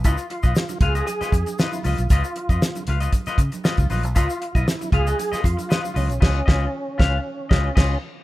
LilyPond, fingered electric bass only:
\new Staff \with { instrumentName = "Fingered electric bass" } { \clef bass \time 4/4 \key des \mixolydian \tempo 4 = 117 des,16 r8 ces,16 r8 des,8 r8 f,16 r8. des,16 ces,16 | des,16 r8 f,16 r8 des,8 r8 des16 r8 des,16 bes,,16 ces,16 | des,16 r8 ces,16 r8 des,8 r8 f,16 r8. des,16 ces,16 | des,8 des,8 r8 des,8 r8 des,8 des,8 r8 | }